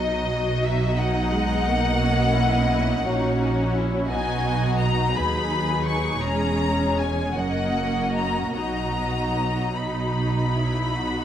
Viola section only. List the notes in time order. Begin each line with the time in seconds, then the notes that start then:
Already playing: F#3 F#4
0.98 F#3 D#4
1.33 G#3
1.67 A#3
2.01 C#4
3.06 C#4 F#4
4.10 B3 D#4
5.15 F#3 D#4
6.21 G#3 C#4
7.37 A#3 C#4
8.56 F#3 D#4